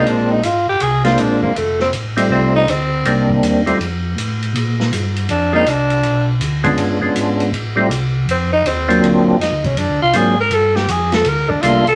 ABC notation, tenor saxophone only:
X:1
M:4/4
L:1/8
Q:"Swing" 1/4=161
K:Bb
V:1 name="Tenor saxophone"
D E F G _A F D B, | A, C z2 C E C2- | C z6 z | z4 D E D2- |
D z6 z | z4 C E C2- | C z E _D =D ^E _A ^A | A G _A =A B D F A |]